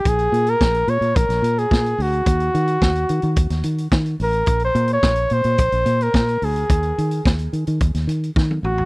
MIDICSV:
0, 0, Header, 1, 4, 480
1, 0, Start_track
1, 0, Key_signature, -5, "minor"
1, 0, Tempo, 552995
1, 49, Time_signature, 4, 2, 24, 8
1, 7684, End_track
2, 0, Start_track
2, 0, Title_t, "Flugelhorn"
2, 0, Program_c, 0, 56
2, 73, Note_on_c, 0, 68, 118
2, 430, Note_on_c, 0, 70, 104
2, 443, Note_off_c, 0, 68, 0
2, 778, Note_on_c, 0, 73, 100
2, 791, Note_off_c, 0, 70, 0
2, 1007, Note_on_c, 0, 70, 92
2, 1020, Note_off_c, 0, 73, 0
2, 1377, Note_on_c, 0, 68, 91
2, 1390, Note_off_c, 0, 70, 0
2, 1753, Note_on_c, 0, 66, 96
2, 1766, Note_off_c, 0, 68, 0
2, 3182, Note_off_c, 0, 66, 0
2, 3673, Note_on_c, 0, 70, 99
2, 3997, Note_off_c, 0, 70, 0
2, 4033, Note_on_c, 0, 72, 94
2, 4246, Note_off_c, 0, 72, 0
2, 4280, Note_on_c, 0, 73, 106
2, 4627, Note_on_c, 0, 72, 116
2, 4640, Note_off_c, 0, 73, 0
2, 5231, Note_on_c, 0, 70, 97
2, 5244, Note_off_c, 0, 72, 0
2, 5592, Note_on_c, 0, 68, 84
2, 5605, Note_off_c, 0, 70, 0
2, 6302, Note_off_c, 0, 68, 0
2, 7505, Note_on_c, 0, 66, 89
2, 7684, Note_off_c, 0, 66, 0
2, 7684, End_track
3, 0, Start_track
3, 0, Title_t, "Fingered electric bass"
3, 0, Program_c, 1, 33
3, 46, Note_on_c, 1, 34, 110
3, 234, Note_off_c, 1, 34, 0
3, 279, Note_on_c, 1, 46, 101
3, 470, Note_off_c, 1, 46, 0
3, 529, Note_on_c, 1, 34, 106
3, 716, Note_off_c, 1, 34, 0
3, 760, Note_on_c, 1, 46, 102
3, 857, Note_off_c, 1, 46, 0
3, 876, Note_on_c, 1, 46, 85
3, 975, Note_off_c, 1, 46, 0
3, 1006, Note_on_c, 1, 34, 92
3, 1101, Note_off_c, 1, 34, 0
3, 1117, Note_on_c, 1, 34, 90
3, 1215, Note_off_c, 1, 34, 0
3, 1235, Note_on_c, 1, 46, 101
3, 1428, Note_off_c, 1, 46, 0
3, 1486, Note_on_c, 1, 46, 107
3, 1675, Note_off_c, 1, 46, 0
3, 1723, Note_on_c, 1, 38, 98
3, 1913, Note_off_c, 1, 38, 0
3, 1966, Note_on_c, 1, 39, 105
3, 2155, Note_off_c, 1, 39, 0
3, 2209, Note_on_c, 1, 51, 106
3, 2396, Note_off_c, 1, 51, 0
3, 2447, Note_on_c, 1, 39, 103
3, 2636, Note_off_c, 1, 39, 0
3, 2688, Note_on_c, 1, 51, 94
3, 2782, Note_off_c, 1, 51, 0
3, 2805, Note_on_c, 1, 51, 92
3, 2901, Note_off_c, 1, 51, 0
3, 2923, Note_on_c, 1, 39, 97
3, 3019, Note_off_c, 1, 39, 0
3, 3040, Note_on_c, 1, 39, 91
3, 3137, Note_off_c, 1, 39, 0
3, 3159, Note_on_c, 1, 51, 87
3, 3351, Note_off_c, 1, 51, 0
3, 3405, Note_on_c, 1, 51, 113
3, 3594, Note_off_c, 1, 51, 0
3, 3643, Note_on_c, 1, 33, 93
3, 3833, Note_off_c, 1, 33, 0
3, 3881, Note_on_c, 1, 34, 105
3, 4072, Note_off_c, 1, 34, 0
3, 4121, Note_on_c, 1, 46, 112
3, 4312, Note_off_c, 1, 46, 0
3, 4366, Note_on_c, 1, 34, 109
3, 4555, Note_off_c, 1, 34, 0
3, 4610, Note_on_c, 1, 46, 95
3, 4704, Note_off_c, 1, 46, 0
3, 4727, Note_on_c, 1, 46, 89
3, 4822, Note_off_c, 1, 46, 0
3, 4846, Note_on_c, 1, 34, 90
3, 4941, Note_off_c, 1, 34, 0
3, 4967, Note_on_c, 1, 34, 90
3, 5062, Note_off_c, 1, 34, 0
3, 5083, Note_on_c, 1, 46, 107
3, 5274, Note_off_c, 1, 46, 0
3, 5332, Note_on_c, 1, 46, 102
3, 5519, Note_off_c, 1, 46, 0
3, 5571, Note_on_c, 1, 38, 94
3, 5759, Note_off_c, 1, 38, 0
3, 5812, Note_on_c, 1, 39, 102
3, 5999, Note_off_c, 1, 39, 0
3, 6061, Note_on_c, 1, 51, 104
3, 6245, Note_off_c, 1, 51, 0
3, 6296, Note_on_c, 1, 39, 101
3, 6482, Note_off_c, 1, 39, 0
3, 6535, Note_on_c, 1, 51, 94
3, 6627, Note_off_c, 1, 51, 0
3, 6663, Note_on_c, 1, 51, 96
3, 6752, Note_off_c, 1, 51, 0
3, 6778, Note_on_c, 1, 39, 98
3, 6869, Note_off_c, 1, 39, 0
3, 6896, Note_on_c, 1, 39, 94
3, 6988, Note_off_c, 1, 39, 0
3, 7008, Note_on_c, 1, 51, 83
3, 7197, Note_off_c, 1, 51, 0
3, 7259, Note_on_c, 1, 51, 103
3, 7444, Note_off_c, 1, 51, 0
3, 7490, Note_on_c, 1, 33, 83
3, 7678, Note_off_c, 1, 33, 0
3, 7684, End_track
4, 0, Start_track
4, 0, Title_t, "Drums"
4, 45, Note_on_c, 9, 42, 71
4, 46, Note_on_c, 9, 36, 114
4, 131, Note_off_c, 9, 42, 0
4, 133, Note_off_c, 9, 36, 0
4, 162, Note_on_c, 9, 42, 41
4, 249, Note_off_c, 9, 42, 0
4, 293, Note_on_c, 9, 42, 60
4, 380, Note_off_c, 9, 42, 0
4, 404, Note_on_c, 9, 42, 46
4, 491, Note_off_c, 9, 42, 0
4, 528, Note_on_c, 9, 36, 106
4, 533, Note_on_c, 9, 38, 106
4, 614, Note_off_c, 9, 36, 0
4, 620, Note_off_c, 9, 38, 0
4, 646, Note_on_c, 9, 42, 43
4, 732, Note_off_c, 9, 42, 0
4, 762, Note_on_c, 9, 42, 52
4, 849, Note_off_c, 9, 42, 0
4, 884, Note_on_c, 9, 42, 49
4, 971, Note_off_c, 9, 42, 0
4, 1007, Note_on_c, 9, 36, 123
4, 1008, Note_on_c, 9, 42, 79
4, 1094, Note_off_c, 9, 36, 0
4, 1095, Note_off_c, 9, 42, 0
4, 1126, Note_on_c, 9, 42, 54
4, 1137, Note_on_c, 9, 38, 36
4, 1213, Note_off_c, 9, 42, 0
4, 1224, Note_off_c, 9, 38, 0
4, 1250, Note_on_c, 9, 42, 78
4, 1337, Note_off_c, 9, 42, 0
4, 1375, Note_on_c, 9, 42, 43
4, 1462, Note_off_c, 9, 42, 0
4, 1486, Note_on_c, 9, 36, 107
4, 1502, Note_on_c, 9, 38, 116
4, 1573, Note_off_c, 9, 36, 0
4, 1589, Note_off_c, 9, 38, 0
4, 1616, Note_on_c, 9, 42, 44
4, 1703, Note_off_c, 9, 42, 0
4, 1736, Note_on_c, 9, 46, 57
4, 1822, Note_off_c, 9, 46, 0
4, 1851, Note_on_c, 9, 42, 44
4, 1938, Note_off_c, 9, 42, 0
4, 1964, Note_on_c, 9, 42, 84
4, 1965, Note_on_c, 9, 36, 123
4, 2051, Note_off_c, 9, 36, 0
4, 2051, Note_off_c, 9, 42, 0
4, 2084, Note_on_c, 9, 42, 44
4, 2171, Note_off_c, 9, 42, 0
4, 2210, Note_on_c, 9, 42, 62
4, 2296, Note_off_c, 9, 42, 0
4, 2321, Note_on_c, 9, 42, 42
4, 2408, Note_off_c, 9, 42, 0
4, 2445, Note_on_c, 9, 36, 104
4, 2449, Note_on_c, 9, 38, 100
4, 2532, Note_off_c, 9, 36, 0
4, 2536, Note_off_c, 9, 38, 0
4, 2563, Note_on_c, 9, 42, 49
4, 2650, Note_off_c, 9, 42, 0
4, 2681, Note_on_c, 9, 42, 63
4, 2768, Note_off_c, 9, 42, 0
4, 2795, Note_on_c, 9, 42, 50
4, 2882, Note_off_c, 9, 42, 0
4, 2918, Note_on_c, 9, 42, 80
4, 2923, Note_on_c, 9, 36, 117
4, 3005, Note_off_c, 9, 42, 0
4, 3010, Note_off_c, 9, 36, 0
4, 3039, Note_on_c, 9, 42, 60
4, 3050, Note_on_c, 9, 38, 36
4, 3126, Note_off_c, 9, 42, 0
4, 3137, Note_off_c, 9, 38, 0
4, 3155, Note_on_c, 9, 42, 79
4, 3242, Note_off_c, 9, 42, 0
4, 3283, Note_on_c, 9, 42, 49
4, 3370, Note_off_c, 9, 42, 0
4, 3400, Note_on_c, 9, 36, 112
4, 3404, Note_on_c, 9, 38, 116
4, 3487, Note_off_c, 9, 36, 0
4, 3491, Note_off_c, 9, 38, 0
4, 3520, Note_on_c, 9, 42, 46
4, 3607, Note_off_c, 9, 42, 0
4, 3643, Note_on_c, 9, 46, 62
4, 3730, Note_off_c, 9, 46, 0
4, 3757, Note_on_c, 9, 42, 45
4, 3844, Note_off_c, 9, 42, 0
4, 3872, Note_on_c, 9, 42, 74
4, 3881, Note_on_c, 9, 36, 113
4, 3959, Note_off_c, 9, 42, 0
4, 3968, Note_off_c, 9, 36, 0
4, 3989, Note_on_c, 9, 42, 40
4, 4076, Note_off_c, 9, 42, 0
4, 4125, Note_on_c, 9, 42, 61
4, 4211, Note_off_c, 9, 42, 0
4, 4232, Note_on_c, 9, 42, 48
4, 4319, Note_off_c, 9, 42, 0
4, 4366, Note_on_c, 9, 36, 103
4, 4366, Note_on_c, 9, 38, 105
4, 4452, Note_off_c, 9, 36, 0
4, 4453, Note_off_c, 9, 38, 0
4, 4475, Note_on_c, 9, 42, 51
4, 4561, Note_off_c, 9, 42, 0
4, 4598, Note_on_c, 9, 42, 57
4, 4685, Note_off_c, 9, 42, 0
4, 4720, Note_on_c, 9, 42, 51
4, 4807, Note_off_c, 9, 42, 0
4, 4843, Note_on_c, 9, 42, 87
4, 4849, Note_on_c, 9, 36, 119
4, 4930, Note_off_c, 9, 42, 0
4, 4936, Note_off_c, 9, 36, 0
4, 4966, Note_on_c, 9, 42, 53
4, 5053, Note_off_c, 9, 42, 0
4, 5084, Note_on_c, 9, 42, 81
4, 5171, Note_off_c, 9, 42, 0
4, 5213, Note_on_c, 9, 42, 46
4, 5300, Note_off_c, 9, 42, 0
4, 5330, Note_on_c, 9, 36, 113
4, 5338, Note_on_c, 9, 38, 109
4, 5417, Note_off_c, 9, 36, 0
4, 5425, Note_off_c, 9, 38, 0
4, 5454, Note_on_c, 9, 42, 39
4, 5541, Note_off_c, 9, 42, 0
4, 5573, Note_on_c, 9, 46, 60
4, 5660, Note_off_c, 9, 46, 0
4, 5693, Note_on_c, 9, 42, 45
4, 5779, Note_off_c, 9, 42, 0
4, 5812, Note_on_c, 9, 42, 85
4, 5813, Note_on_c, 9, 36, 113
4, 5899, Note_off_c, 9, 42, 0
4, 5900, Note_off_c, 9, 36, 0
4, 5925, Note_on_c, 9, 42, 44
4, 6012, Note_off_c, 9, 42, 0
4, 6062, Note_on_c, 9, 42, 66
4, 6149, Note_off_c, 9, 42, 0
4, 6172, Note_on_c, 9, 42, 51
4, 6259, Note_off_c, 9, 42, 0
4, 6297, Note_on_c, 9, 36, 116
4, 6306, Note_on_c, 9, 38, 108
4, 6384, Note_off_c, 9, 36, 0
4, 6393, Note_off_c, 9, 38, 0
4, 6411, Note_on_c, 9, 42, 50
4, 6498, Note_off_c, 9, 42, 0
4, 6538, Note_on_c, 9, 42, 63
4, 6625, Note_off_c, 9, 42, 0
4, 6656, Note_on_c, 9, 42, 55
4, 6743, Note_off_c, 9, 42, 0
4, 6774, Note_on_c, 9, 42, 82
4, 6778, Note_on_c, 9, 36, 118
4, 6861, Note_off_c, 9, 42, 0
4, 6865, Note_off_c, 9, 36, 0
4, 6897, Note_on_c, 9, 42, 58
4, 6907, Note_on_c, 9, 38, 37
4, 6983, Note_off_c, 9, 42, 0
4, 6994, Note_off_c, 9, 38, 0
4, 7019, Note_on_c, 9, 42, 78
4, 7106, Note_off_c, 9, 42, 0
4, 7148, Note_on_c, 9, 42, 45
4, 7234, Note_off_c, 9, 42, 0
4, 7257, Note_on_c, 9, 36, 108
4, 7273, Note_on_c, 9, 38, 61
4, 7344, Note_off_c, 9, 36, 0
4, 7360, Note_off_c, 9, 38, 0
4, 7383, Note_on_c, 9, 48, 66
4, 7470, Note_off_c, 9, 48, 0
4, 7503, Note_on_c, 9, 45, 82
4, 7590, Note_off_c, 9, 45, 0
4, 7621, Note_on_c, 9, 43, 88
4, 7684, Note_off_c, 9, 43, 0
4, 7684, End_track
0, 0, End_of_file